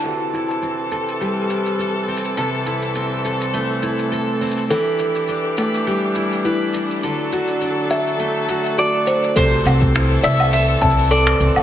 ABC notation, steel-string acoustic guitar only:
X:1
M:4/4
L:1/8
Q:"Swing 16ths" 1/4=103
K:Clyd
V:1 name="Steel-string acoustic guitar"
[C,A] E C A G, E A C | [C,A] E C A A, E A C | [E,B] E D B G, E B D | [D,A] F D A A, F A D |
C, C E C A E A C |]